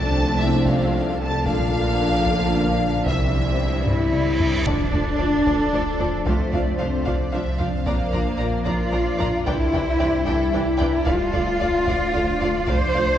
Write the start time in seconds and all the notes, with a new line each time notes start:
Already playing: C2 C3 F3 A3 C4 D4 A4 D5 A5
0.39 E4 E5
0.66 F4 F5, taiko
1.19 A4 A5
1.46 A#1 A#2 D3 F3 A#3 D4 F4 A#4 F5, taiko
2.27 taiko
3.05 C2 C3 E3 G3 C4 E4 C5 E5, taiko, reverse cymbal
3.86 E4, taiko low-mid
4.13 taiko mid
4.40 taiko low
4.66 D1 D2 F3 D4 A4 D5, taiko, impact
4.92 D2 F3 D4 A4 D5, taiko low
5.18 D2 F3 D4 A4 D5
5.46 D2 F3 D4 A4 D5, taiko
5.73 D2 F3 D4 A4 D5
5.99 D2 F3 D4 A4 D5, taiko low
6.26 C2 F3 A3 C4 D4 C5 F5, taiko
6.52 C2 F3 D4 C5 D5 F5, taiko low
6.78 C2 F3 D4 C5 F5
7.05 C2 F3 D4 C5 D5 F5, taiko
7.33 C2 F3 D4 C5 E5 F5
7.59 C2 F3 D4 C5 F5, taiko low
7.86 A#1 F3 A#3 D4 A#4 D5 A#5, taiko
8.12 A#1 F3 D4 D5 A#5, taiko low
8.38 A#1 F3 D4 D5 A#5
8.65 A#1 F3 D4 F4 D5 A#5, taiko
8.91 A#1 F3 D4 D5 A#5
9.18 A#1 F3 D4 D5 A#5, taiko low
9.45 C2 E3 G3 D4 E4 G4 C5 D5 G5, taiko
9.73 C2 E3 D4 D5 G5, taiko low
10.00 C2 E3 D4 D5 G5
10.26 C2 E3 D4 E4 A4 D5 G5, taiko
10.53 C2 E3 D4 G4 D5 G5
10.79 C2 E3 D4 A#4 D5 G5, taiko low
11.05 D1 D2 F3 A3 D4 F4 A4 D5 F5, taiko
11.33 D2 A3 F4 D5 F5, taiko low
11.60 D2 A3 F4 D5 F5
11.87 D2 A3 F4 D5 F5, taiko
12.13 D2 A3 F4 C5 D5 F5
12.39 D2 A3 F4 D5 F5, taiko low
12.67 C2 A3 F4 C5 D5 F5, taiko
12.94 C2 A3 F4 D5 F5